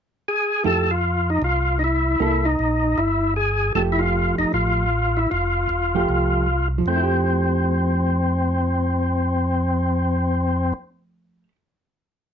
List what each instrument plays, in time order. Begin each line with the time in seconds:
0.28 tonewheel organ G#4
0.64 tonewheel organ F2 A4, hollow-body jazz guitar F3 A3 E4 G4
0.91 tonewheel organ F4
1.30 tonewheel organ D#4
1.42 tonewheel organ C2 F4
1.79 tonewheel organ D#4
1.84 tonewheel organ E4
2.20 tonewheel organ C2 E4, hollow-body jazz guitar A#3 E4 A4
2.45 tonewheel organ D#4
2.59 tonewheel organ A#1
2.98 tonewheel organ G1 E4
3.36 tonewheel organ G#4
3.75 tonewheel organ F1 A4, hollow-body jazz guitar F3 A3 G4
3.92 tonewheel organ E4
3.99 tonewheel organ F4
4.38 tonewheel organ F1 D#4
4.53 tonewheel organ A1 F4
5.17 tonewheel organ E4
5.31 tonewheel organ F1 F4
5.69 tonewheel organ E1
5.95 hollow-body jazz guitar F3 A3 G4
6.09 tonewheel organ C2
6.78 hollow-body jazz guitar F3
6.86 tonewheel organ F2 C4, hollow-body jazz guitar A3
6.96 hollow-body jazz guitar E4
7.03 hollow-body jazz guitar G4